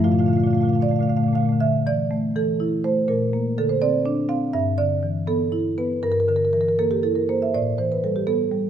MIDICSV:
0, 0, Header, 1, 2, 480
1, 0, Start_track
1, 0, Key_signature, -1, "minor"
1, 0, Tempo, 518135
1, 41, Time_signature, 6, 3, 24, 8
1, 1960, Tempo, 484262
1, 4840, Tempo, 503356
1, 7240, Tempo, 485044
1, 8388, End_track
2, 0, Start_track
2, 0, Title_t, "Marimba"
2, 0, Program_c, 0, 12
2, 36, Note_on_c, 0, 50, 49
2, 37, Note_on_c, 0, 46, 54
2, 37, Note_on_c, 0, 65, 47
2, 38, Note_on_c, 0, 77, 61
2, 39, Note_on_c, 0, 57, 47
2, 106, Note_off_c, 0, 65, 0
2, 106, Note_on_c, 0, 65, 37
2, 109, Note_off_c, 0, 77, 0
2, 109, Note_on_c, 0, 77, 46
2, 110, Note_off_c, 0, 57, 0
2, 110, Note_on_c, 0, 57, 35
2, 113, Note_off_c, 0, 50, 0
2, 113, Note_on_c, 0, 50, 37
2, 131, Note_off_c, 0, 46, 0
2, 131, Note_on_c, 0, 46, 44
2, 172, Note_off_c, 0, 77, 0
2, 172, Note_on_c, 0, 77, 55
2, 177, Note_off_c, 0, 65, 0
2, 177, Note_on_c, 0, 65, 42
2, 180, Note_off_c, 0, 57, 0
2, 180, Note_on_c, 0, 57, 39
2, 189, Note_off_c, 0, 50, 0
2, 189, Note_on_c, 0, 50, 43
2, 222, Note_off_c, 0, 46, 0
2, 222, Note_on_c, 0, 46, 44
2, 242, Note_off_c, 0, 77, 0
2, 242, Note_on_c, 0, 77, 50
2, 255, Note_off_c, 0, 65, 0
2, 255, Note_on_c, 0, 65, 39
2, 259, Note_off_c, 0, 57, 0
2, 259, Note_on_c, 0, 57, 39
2, 270, Note_off_c, 0, 50, 0
2, 270, Note_on_c, 0, 50, 41
2, 307, Note_off_c, 0, 77, 0
2, 307, Note_on_c, 0, 77, 52
2, 311, Note_off_c, 0, 46, 0
2, 311, Note_on_c, 0, 46, 41
2, 331, Note_off_c, 0, 65, 0
2, 331, Note_on_c, 0, 65, 41
2, 341, Note_off_c, 0, 57, 0
2, 341, Note_on_c, 0, 57, 38
2, 354, Note_off_c, 0, 50, 0
2, 354, Note_on_c, 0, 50, 44
2, 370, Note_off_c, 0, 77, 0
2, 370, Note_on_c, 0, 77, 49
2, 402, Note_off_c, 0, 46, 0
2, 402, Note_on_c, 0, 46, 46
2, 403, Note_off_c, 0, 65, 0
2, 403, Note_on_c, 0, 65, 39
2, 413, Note_off_c, 0, 57, 0
2, 413, Note_on_c, 0, 57, 37
2, 434, Note_off_c, 0, 77, 0
2, 434, Note_on_c, 0, 77, 55
2, 438, Note_off_c, 0, 50, 0
2, 438, Note_on_c, 0, 50, 40
2, 466, Note_off_c, 0, 65, 0
2, 466, Note_on_c, 0, 65, 41
2, 491, Note_off_c, 0, 46, 0
2, 491, Note_on_c, 0, 46, 42
2, 495, Note_off_c, 0, 57, 0
2, 495, Note_on_c, 0, 57, 42
2, 505, Note_off_c, 0, 77, 0
2, 505, Note_on_c, 0, 77, 46
2, 513, Note_off_c, 0, 50, 0
2, 513, Note_on_c, 0, 50, 40
2, 537, Note_off_c, 0, 65, 0
2, 537, Note_on_c, 0, 65, 39
2, 558, Note_off_c, 0, 57, 0
2, 558, Note_on_c, 0, 57, 38
2, 569, Note_off_c, 0, 77, 0
2, 569, Note_on_c, 0, 77, 50
2, 576, Note_off_c, 0, 46, 0
2, 576, Note_on_c, 0, 46, 48
2, 589, Note_off_c, 0, 50, 0
2, 589, Note_on_c, 0, 50, 40
2, 602, Note_off_c, 0, 65, 0
2, 602, Note_on_c, 0, 65, 40
2, 629, Note_off_c, 0, 57, 0
2, 629, Note_on_c, 0, 57, 39
2, 638, Note_off_c, 0, 77, 0
2, 638, Note_on_c, 0, 77, 51
2, 652, Note_off_c, 0, 46, 0
2, 652, Note_on_c, 0, 46, 46
2, 675, Note_off_c, 0, 50, 0
2, 675, Note_on_c, 0, 50, 40
2, 679, Note_off_c, 0, 65, 0
2, 679, Note_on_c, 0, 65, 37
2, 695, Note_off_c, 0, 77, 0
2, 695, Note_on_c, 0, 77, 51
2, 701, Note_off_c, 0, 57, 0
2, 701, Note_on_c, 0, 57, 36
2, 729, Note_off_c, 0, 65, 0
2, 745, Note_off_c, 0, 46, 0
2, 745, Note_on_c, 0, 46, 44
2, 755, Note_off_c, 0, 77, 0
2, 755, Note_on_c, 0, 77, 48
2, 759, Note_off_c, 0, 50, 0
2, 759, Note_on_c, 0, 50, 37
2, 763, Note_on_c, 0, 74, 83
2, 778, Note_off_c, 0, 57, 0
2, 778, Note_on_c, 0, 57, 39
2, 821, Note_off_c, 0, 77, 0
2, 821, Note_on_c, 0, 77, 50
2, 832, Note_off_c, 0, 46, 0
2, 832, Note_on_c, 0, 46, 42
2, 845, Note_off_c, 0, 50, 0
2, 845, Note_off_c, 0, 57, 0
2, 845, Note_on_c, 0, 50, 44
2, 845, Note_on_c, 0, 57, 37
2, 889, Note_off_c, 0, 77, 0
2, 889, Note_on_c, 0, 77, 48
2, 915, Note_off_c, 0, 46, 0
2, 915, Note_on_c, 0, 46, 49
2, 931, Note_off_c, 0, 57, 0
2, 931, Note_on_c, 0, 57, 42
2, 934, Note_off_c, 0, 50, 0
2, 934, Note_on_c, 0, 50, 41
2, 952, Note_off_c, 0, 77, 0
2, 952, Note_on_c, 0, 77, 50
2, 1001, Note_off_c, 0, 46, 0
2, 1001, Note_on_c, 0, 46, 42
2, 1011, Note_off_c, 0, 50, 0
2, 1011, Note_on_c, 0, 50, 40
2, 1013, Note_off_c, 0, 57, 0
2, 1013, Note_on_c, 0, 57, 38
2, 1015, Note_off_c, 0, 77, 0
2, 1015, Note_on_c, 0, 77, 50
2, 1081, Note_off_c, 0, 77, 0
2, 1081, Note_on_c, 0, 77, 52
2, 1086, Note_off_c, 0, 50, 0
2, 1086, Note_on_c, 0, 50, 37
2, 1087, Note_off_c, 0, 46, 0
2, 1087, Note_off_c, 0, 57, 0
2, 1087, Note_on_c, 0, 46, 45
2, 1087, Note_on_c, 0, 57, 39
2, 1142, Note_off_c, 0, 77, 0
2, 1142, Note_on_c, 0, 77, 47
2, 1151, Note_off_c, 0, 57, 0
2, 1151, Note_on_c, 0, 57, 35
2, 1169, Note_off_c, 0, 50, 0
2, 1169, Note_on_c, 0, 50, 42
2, 1188, Note_off_c, 0, 46, 0
2, 1188, Note_on_c, 0, 46, 44
2, 1211, Note_off_c, 0, 77, 0
2, 1228, Note_off_c, 0, 74, 0
2, 1234, Note_off_c, 0, 57, 0
2, 1234, Note_on_c, 0, 57, 42
2, 1251, Note_off_c, 0, 50, 0
2, 1251, Note_on_c, 0, 50, 41
2, 1254, Note_on_c, 0, 77, 73
2, 1275, Note_off_c, 0, 46, 0
2, 1275, Note_on_c, 0, 46, 47
2, 1302, Note_off_c, 0, 57, 0
2, 1302, Note_on_c, 0, 57, 38
2, 1326, Note_off_c, 0, 50, 0
2, 1326, Note_on_c, 0, 50, 40
2, 1345, Note_off_c, 0, 46, 0
2, 1345, Note_on_c, 0, 46, 42
2, 1381, Note_off_c, 0, 57, 0
2, 1381, Note_on_c, 0, 57, 40
2, 1411, Note_off_c, 0, 50, 0
2, 1411, Note_on_c, 0, 50, 39
2, 1451, Note_off_c, 0, 46, 0
2, 1451, Note_off_c, 0, 50, 0
2, 1452, Note_off_c, 0, 57, 0
2, 1483, Note_off_c, 0, 77, 0
2, 1486, Note_on_c, 0, 50, 59
2, 1486, Note_on_c, 0, 76, 82
2, 1716, Note_off_c, 0, 76, 0
2, 1728, Note_on_c, 0, 52, 52
2, 1731, Note_on_c, 0, 74, 79
2, 1954, Note_on_c, 0, 57, 49
2, 2108, Note_off_c, 0, 52, 0
2, 2187, Note_off_c, 0, 74, 0
2, 2201, Note_on_c, 0, 52, 63
2, 2202, Note_on_c, 0, 69, 75
2, 2345, Note_off_c, 0, 57, 0
2, 2440, Note_on_c, 0, 64, 58
2, 2588, Note_off_c, 0, 52, 0
2, 2666, Note_off_c, 0, 69, 0
2, 2680, Note_on_c, 0, 57, 52
2, 2681, Note_on_c, 0, 72, 76
2, 2829, Note_off_c, 0, 64, 0
2, 2886, Note_off_c, 0, 50, 0
2, 2916, Note_off_c, 0, 72, 0
2, 2917, Note_on_c, 0, 70, 68
2, 2918, Note_on_c, 0, 46, 64
2, 2925, Note_off_c, 0, 57, 0
2, 3167, Note_on_c, 0, 58, 52
2, 3388, Note_off_c, 0, 70, 0
2, 3411, Note_on_c, 0, 50, 61
2, 3413, Note_on_c, 0, 69, 79
2, 3524, Note_on_c, 0, 72, 64
2, 3531, Note_off_c, 0, 69, 0
2, 3552, Note_off_c, 0, 58, 0
2, 3645, Note_off_c, 0, 72, 0
2, 3645, Note_on_c, 0, 60, 65
2, 3646, Note_on_c, 0, 74, 103
2, 3788, Note_off_c, 0, 50, 0
2, 3883, Note_on_c, 0, 62, 67
2, 4022, Note_off_c, 0, 60, 0
2, 4098, Note_off_c, 0, 74, 0
2, 4113, Note_on_c, 0, 60, 60
2, 4115, Note_on_c, 0, 77, 80
2, 4261, Note_off_c, 0, 62, 0
2, 4312, Note_off_c, 0, 46, 0
2, 4345, Note_off_c, 0, 77, 0
2, 4354, Note_off_c, 0, 60, 0
2, 4357, Note_on_c, 0, 76, 85
2, 4358, Note_on_c, 0, 43, 72
2, 4588, Note_off_c, 0, 76, 0
2, 4599, Note_on_c, 0, 50, 51
2, 4599, Note_on_c, 0, 74, 93
2, 4847, Note_on_c, 0, 52, 54
2, 4983, Note_off_c, 0, 50, 0
2, 5059, Note_off_c, 0, 74, 0
2, 5080, Note_on_c, 0, 59, 60
2, 5082, Note_on_c, 0, 69, 81
2, 5222, Note_off_c, 0, 52, 0
2, 5316, Note_on_c, 0, 64, 54
2, 5459, Note_off_c, 0, 59, 0
2, 5537, Note_off_c, 0, 69, 0
2, 5561, Note_on_c, 0, 59, 53
2, 5563, Note_on_c, 0, 71, 70
2, 5699, Note_off_c, 0, 64, 0
2, 5757, Note_off_c, 0, 43, 0
2, 5789, Note_off_c, 0, 71, 0
2, 5798, Note_off_c, 0, 59, 0
2, 5800, Note_on_c, 0, 70, 77
2, 5801, Note_on_c, 0, 43, 59
2, 5884, Note_off_c, 0, 70, 0
2, 5884, Note_on_c, 0, 70, 61
2, 5964, Note_off_c, 0, 70, 0
2, 5964, Note_on_c, 0, 70, 63
2, 6040, Note_on_c, 0, 50, 46
2, 6045, Note_off_c, 0, 70, 0
2, 6045, Note_on_c, 0, 70, 64
2, 6117, Note_off_c, 0, 70, 0
2, 6117, Note_on_c, 0, 70, 66
2, 6200, Note_off_c, 0, 70, 0
2, 6200, Note_on_c, 0, 70, 59
2, 6279, Note_off_c, 0, 70, 0
2, 6279, Note_on_c, 0, 70, 66
2, 6281, Note_on_c, 0, 52, 48
2, 6353, Note_off_c, 0, 70, 0
2, 6353, Note_on_c, 0, 70, 63
2, 6421, Note_off_c, 0, 50, 0
2, 6426, Note_off_c, 0, 70, 0
2, 6426, Note_on_c, 0, 70, 62
2, 6488, Note_off_c, 0, 70, 0
2, 6525, Note_on_c, 0, 69, 73
2, 6527, Note_on_c, 0, 58, 55
2, 6639, Note_off_c, 0, 69, 0
2, 6639, Note_on_c, 0, 67, 65
2, 6661, Note_off_c, 0, 52, 0
2, 6757, Note_off_c, 0, 67, 0
2, 6757, Note_on_c, 0, 64, 50
2, 6757, Note_on_c, 0, 69, 70
2, 6873, Note_on_c, 0, 70, 58
2, 6877, Note_off_c, 0, 69, 0
2, 6907, Note_off_c, 0, 58, 0
2, 6997, Note_off_c, 0, 70, 0
2, 7004, Note_on_c, 0, 72, 64
2, 7006, Note_on_c, 0, 58, 44
2, 7123, Note_off_c, 0, 72, 0
2, 7130, Note_on_c, 0, 76, 67
2, 7146, Note_off_c, 0, 64, 0
2, 7205, Note_off_c, 0, 43, 0
2, 7244, Note_off_c, 0, 58, 0
2, 7245, Note_off_c, 0, 76, 0
2, 7245, Note_on_c, 0, 45, 63
2, 7247, Note_on_c, 0, 74, 72
2, 7480, Note_off_c, 0, 74, 0
2, 7483, Note_on_c, 0, 72, 59
2, 7486, Note_on_c, 0, 52, 45
2, 7606, Note_off_c, 0, 72, 0
2, 7616, Note_on_c, 0, 71, 57
2, 7732, Note_off_c, 0, 71, 0
2, 7735, Note_on_c, 0, 69, 57
2, 7736, Note_on_c, 0, 55, 43
2, 7851, Note_off_c, 0, 69, 0
2, 7853, Note_on_c, 0, 67, 52
2, 7872, Note_off_c, 0, 52, 0
2, 7962, Note_on_c, 0, 59, 53
2, 7964, Note_on_c, 0, 69, 80
2, 7968, Note_off_c, 0, 67, 0
2, 8111, Note_off_c, 0, 55, 0
2, 8205, Note_on_c, 0, 55, 53
2, 8343, Note_off_c, 0, 59, 0
2, 8388, Note_off_c, 0, 45, 0
2, 8388, Note_off_c, 0, 55, 0
2, 8388, Note_off_c, 0, 69, 0
2, 8388, End_track
0, 0, End_of_file